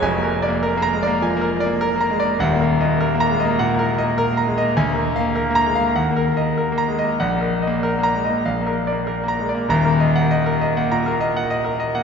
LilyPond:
<<
  \new Staff \with { instrumentName = "Grand piano" } { \time 4/4 \key ees \minor \tempo 4 = 100 << { r4 \tuplet 3/2 { r8 bes''4 } r2 | r4 \tuplet 3/2 { r8 bes''4 } r2 | r4 \tuplet 3/2 { r8 bes''4 } r4 \tuplet 3/2 { r8 bes''4 } | r4 \tuplet 3/2 { r8 bes''4 } r4 \tuplet 3/2 { r8 bes''4 } |
bes''8 r2. r8 | } \\ { \tuplet 3/2 { aes''8 bes'8 d''8 bes'4 d''8 aes''8 bes'8 d''8 bes'8 bes''8 d''8 } | \tuplet 3/2 { ges''8 bes'8 ees''8 bes'4 ees''8 ges''8 bes'8 ees''8 bes'8 bes''8 ees''8 } | \tuplet 3/2 { aes''8 bes'8 f''8 bes'4 f''8 ges''8 bes'8 ees''8 bes'4 ees''8 } | \tuplet 3/2 { ges''8 bes'8 ees''8 bes'4 ees''8 f''8 bes'8 d''8 bes'4 d''8 } |
r16 bes'16 ees''16 ges''16 ees''16 bes'16 ees''16 ges''16 bes''16 bes'16 ees''16 ges''16 ees''16 bes'16 ees''16 ges''16 | } >> }
  \new Staff \with { instrumentName = "Grand piano" } { \time 4/4 \key ees \minor <f,, f,>16 bes8 bes8 bes16 aes16 bes16 f16 bes8 bes8 bes16 aes16 bes16 | <ees,, ees,>16 bes8 bes8 bes16 aes16 bes16 bes,16 bes8 bes8 bes16 aes16 bes16 | d,16 bes8 bes8 bes16 aes16 bes16 ees,16 bes8 bes8 bes16 aes16 bes16 | bes,,16 bes8 bes8 bes16 aes16 bes16 bes,,16 bes8 bes8 bes16 aes16 bes16 |
<ees,, ees,>16 bes8 r4 bes16 bes,16 bes8 r4 bes16 | }
>>